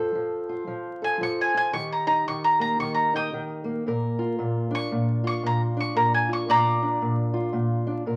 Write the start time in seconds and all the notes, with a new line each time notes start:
Already playing: F3 C4 A4
0.15 F3
0.49 F4
0.67 F3
1.02 A4 G#5
1.21 F3 C#6
1.41 G#5
1.54 F4 G#5
1.73 D#3 G4 C#6
1.92 A#5
2.07 D#4 A#5
2.28 D#3 C#6
2.44 A#5
2.60 A#3 A#5
2.80 D#3 C#6
2.95 A#5
3.14 D#4 G5 D#6
3.33 D#3
3.64 A#3
3.87 A#2 A#4
4.19 F4
4.39 A#2
4.71 D4
4.75 C#6
4.92 A#2
5.24 F4 C#6
5.43 A#2 A#5
5.77 D4 C#6
5.95 A#2 A#4 A#5
6.15 G#5
6.29 F4
6.33 C#6
6.48 A#2 D5 A#5
6.82 D4
7.01 A#2
7.34 F4
7.53 A#2
7.87 D4
8.06 A#2 A#4